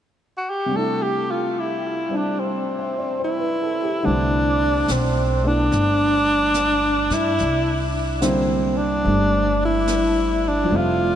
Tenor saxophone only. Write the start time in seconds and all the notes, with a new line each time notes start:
0.37 F#4
0.50 G4
0.76 A4
1.02 G4
1.31 F4
1.60 E4
2.17 D4
2.40 C4
3.24 E4
4.06 D4
4.92 C4
5.48 D4
7.13 E4
8.23 C4
8.77 D4
9.65 E4
10.48 D4
10.76 F4